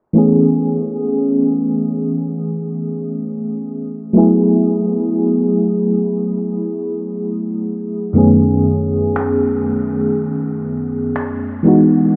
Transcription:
0.13 E3 A3 B3 C#4
0.18 G#4
4.13 F#3 A3 B3 E4
4.18 G#4
8.13 F#2 D#3 A3 B3 C#4
8.18 G#4
9.16 finger snap
11.16 finger snap
11.63 E3 G#3 B3 D#4
11.68 F#4

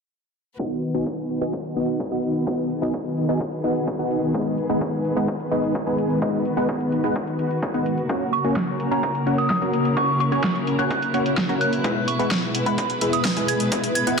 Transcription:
0.59 D#3 B3 D#4 F#4 B4 D#5 F#5, kick
0.83 closed hi-hat
0.94 B3 D#4 F#4 D#5 G#5, closed hi-hat
1.06 kick, closed hi-hat
1.30 closed hi-hat
1.41 B3 D#4 F#4 D#5 G#5, closed hi-hat
1.53 kick, closed hi-hat
1.65 closed hi-hat
1.76 B3 D#4 F#4 D#5 F#5, closed hi-hat
1.88 closed hi-hat
2.00 kick, closed hi-hat
2.12 B3 D#4 F#4 D#5 F#5, closed hi-hat
2.23 closed hi-hat
2.35 closed hi-hat
2.47 B3 D#4 F#4 G#4 D#5 F#5, kick, closed hi-hat
2.70 closed hi-hat
2.82 B3 D#4 F#4 D#5 G#5, closed hi-hat
2.94 kick, closed hi-hat
3.05 closed hi-hat
3.17 closed hi-hat
3.29 B3 D#4 F#4 D#5 G#5, closed hi-hat
3.41 kick, closed hi-hat
3.52 closed hi-hat
3.64 B3 D#4 F#4 D#5 F#5, closed hi-hat
3.76 closed hi-hat
3.87 kick, closed hi-hat
3.99 B3 D#4 F#4 D#5 F#5, closed hi-hat
4.11 closed hi-hat
4.23 closed hi-hat
4.34 G#3 B3 D#4 B4 D#5, kick, closed hi-hat
4.58 closed hi-hat
4.69 G#3 B3 D#4 B4 F#5, closed hi-hat
4.81 kick, closed hi-hat
5.05 closed hi-hat
5.16 G#3 B3 D#4 B4 F#5, closed hi-hat
5.28 kick, closed hi-hat
5.40 closed hi-hat
5.51 G#3 B3 D#4 B4 D#5, closed hi-hat
5.63 closed hi-hat
5.75 kick, closed hi-hat
5.87 G#3 B3 D#4 B4 G#5, closed hi-hat
5.98 closed hi-hat
6.10 closed hi-hat
6.22 G#3 B3 D#4 F#4 B4 D#5, kick, closed hi-hat
6.45 closed hi-hat
6.57 G#3 B3 D#4 B4 F#5, closed hi-hat
6.69 kick, closed hi-hat
6.80 closed hi-hat
6.92 closed hi-hat
7.04 G#3 B3 D#4 B4 F#5, closed hi-hat
7.16 kick, closed hi-hat
7.27 closed hi-hat
7.39 closed hi-hat
7.51 closed hi-hat
7.62 kick, closed hi-hat
7.74 G#3 B3 D#4 B4 F#5, closed hi-hat
7.86 closed hi-hat
7.98 closed hi-hat
8.09 C#3 A#3 C#4 F#4 A#4 C#5 F#5, kick, closed hi-hat
8.33 C#6, closed hi-hat
8.44 A#3 C#4 F#4 C#5 G#5, closed hi-hat
8.56 kick, snare, closed hi-hat
8.80 closed hi-hat
8.91 A#3 C#4 F#4 C#5 G#5 A#5, closed hi-hat
9.03 kick, closed hi-hat
9.15 closed hi-hat
9.27 A#3 C#4 F#4 C#5 F#5, closed hi-hat
9.38 D#6, closed hi-hat
9.50 D#6, kick, snare, closed hi-hat
9.62 A#3 C#4 F#4 C#5 A#5, closed hi-hat
9.73 closed hi-hat
9.85 closed hi-hat
9.97 A#3 C#4 E4 F#4 C#5 F#5 C#6, kick, closed hi-hat
10.20 C#6, closed hi-hat
10.32 A#3 C#4 F#4 C#5 G#5 C#6, closed hi-hat
10.44 kick, snare, closed hi-hat
10.55 closed hi-hat
10.67 closed hi-hat
10.79 A#3 C#4 F#4 C#5 G#5 F#6, closed hi-hat
10.91 F#6, kick, closed hi-hat
11.02 closed hi-hat
11.14 A#3 C#4 F#4 C#5 F#5, closed hi-hat
11.26 closed hi-hat
11.37 kick, snare, closed hi-hat
11.49 A#3 C#4 F#4 C#5 A#5, closed hi-hat
11.61 F#6, closed hi-hat
11.73 closed hi-hat
11.84 B2 G#3 B3 E4 B4 E5, kick, closed hi-hat
12.08 C#6, closed hi-hat
12.19 G#3 B3 E4 B4 F#5, closed hi-hat
12.31 kick, snare, closed hi-hat
12.55 closed hi-hat
12.66 G#3 B3 E4 B4 F#5 B5, closed hi-hat
12.78 kick, closed hi-hat
12.90 closed hi-hat
13.01 G#3 B3 E4 B4 E5, closed hi-hat
13.13 D#6, closed hi-hat
13.25 D#6, kick, snare, closed hi-hat
13.37 G#3 B3 E4 B4 G#5, closed hi-hat
13.48 G#6, closed hi-hat
13.60 closed hi-hat
13.72 G#3 B3 E4 B4 E5, kick, closed hi-hat
13.84 closed hi-hat
13.95 G#6, closed hi-hat
14.07 G#3 B3 E4 B4 F#5, closed hi-hat

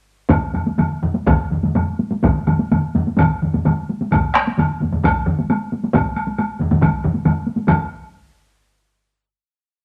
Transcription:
0.29 taiko, taiko low-mid, taiko mid, taiko high, high woodblock
0.54 taiko low-mid, taiko mid, taiko high, high woodblock
0.66 taiko high
0.78 taiko low-mid, taiko mid, taiko high, high woodblock
1.02 taiko low-mid, taiko mid
1.15 taiko high
1.27 taiko, taiko low-mid, taiko mid, taiko high, high woodblock
1.51 taiko low-mid, taiko mid
1.63 taiko low-mid, taiko mid, taiko high
1.75 taiko low-mid, taiko mid, taiko high, high woodblock
1.99 taiko high
2.11 taiko high
2.23 taiko, taiko low-mid, taiko mid, taiko high, high woodblock
2.47 taiko low-mid, taiko mid, taiko high, high woodblock
2.59 taiko high
2.72 taiko low-mid, taiko mid, taiko high, high woodblock
2.95 taiko low-mid, taiko mid, taiko high
3.07 taiko high
3.18 taiko, taiko low-mid, taiko mid, taiko high, high woodblock
3.42 taiko low-mid, taiko mid
3.53 taiko low-mid, taiko mid, taiko high
3.65 taiko low-mid, taiko mid, taiko high, high woodblock
3.89 taiko high
4.01 taiko high
4.11 taiko, taiko low-mid, taiko mid, taiko high, high woodblock
4.34 taiko rim, taiko high, high woodblock
4.47 taiko high
4.58 taiko low-mid, taiko mid, taiko high, high woodblock
4.80 taiko low-mid, taiko mid, taiko high
4.92 taiko low-mid, taiko mid, taiko high
5.04 taiko, taiko low-mid, taiko mid, taiko high, high woodblock
5.26 taiko low-mid, taiko mid
5.39 taiko high
5.50 taiko high, high woodblock
5.72 taiko high
5.84 taiko high
5.93 taiko, taiko low-mid, taiko mid, taiko high, high woodblock
6.16 taiko high, high woodblock
6.27 taiko high
6.38 taiko high, high woodblock
6.59 taiko low-mid, taiko mid, taiko high
6.71 taiko low-mid, taiko mid, taiko high
6.81 taiko, taiko low-mid, taiko mid, taiko high, high woodblock
7.04 taiko low-mid, taiko mid
7.15 taiko high
7.25 taiko low-mid, taiko mid, taiko high, high woodblock
7.47 taiko high
7.57 taiko high
7.68 taiko, taiko low-mid, taiko mid, taiko high, high woodblock

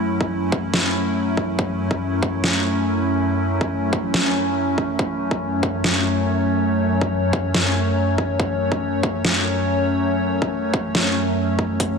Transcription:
Already playing: F#2 F#3 A3 C#4 E4
0.21 kick
0.52 kick
0.74 snare
1.37 kick
1.59 kick
1.91 kick
2.23 kick
2.44 snare
3.61 kick
3.93 kick
4.14 snare
4.78 kick
4.99 C#5, kick
5.31 kick
5.63 kick
5.84 snare
7.01 kick
7.33 kick
7.54 snare
8.18 kick
8.40 kick
8.72 kick
9.03 kick
9.25 snare
10.42 kick
10.74 kick
10.95 snare
11.59 kick
11.80 F#5, kick, closed hi-hat

